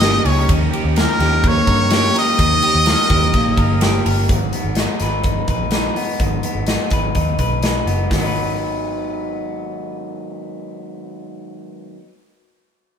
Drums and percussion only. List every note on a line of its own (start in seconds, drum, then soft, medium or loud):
0.00 snare loud
0.00 ride medium
0.25 open hi-hat medium
0.25 ride medium
0.49 kick loud
0.49 hi-hat pedal medium
0.49 ride medium
0.73 ride medium
0.96 snare loud
0.96 ride medium
1.20 snare soft
1.20 ride medium
1.44 kick medium
1.44 ride medium
1.67 kick medium
1.67 ride medium
1.90 snare loud
1.90 ride medium
2.16 open hi-hat medium
2.16 ride medium
2.39 kick loud
2.39 hi-hat pedal medium
2.39 ride medium
2.62 ride medium
2.86 snare loud
2.86 ride medium
3.10 kick medium
3.10 ride medium
3.34 kick medium
3.34 ride medium
3.57 kick medium
3.57 ride medium
3.81 snare loud
3.81 ride medium
4.06 open hi-hat medium
4.06 ride medium
4.29 kick loud
4.29 closed hi-hat medium
4.53 closed hi-hat medium
4.75 snare medium
4.75 closed hi-hat medium
5.00 snare soft
5.00 closed hi-hat medium
5.24 kick medium
5.24 closed hi-hat medium
5.48 kick medium
5.48 closed hi-hat medium
5.71 snare loud
5.71 closed hi-hat medium
5.96 open hi-hat medium
6.20 kick medium
6.20 closed hi-hat medium
6.43 closed hi-hat medium
6.67 snare medium
6.67 closed hi-hat medium
6.90 kick medium
6.90 closed hi-hat medium
7.15 kick medium
7.15 closed hi-hat medium
7.39 kick medium
7.39 closed hi-hat medium
7.63 snare loud
7.63 closed hi-hat medium
7.87 closed hi-hat medium
8.11 kick medium
8.11 snare medium
8.11 open hi-hat medium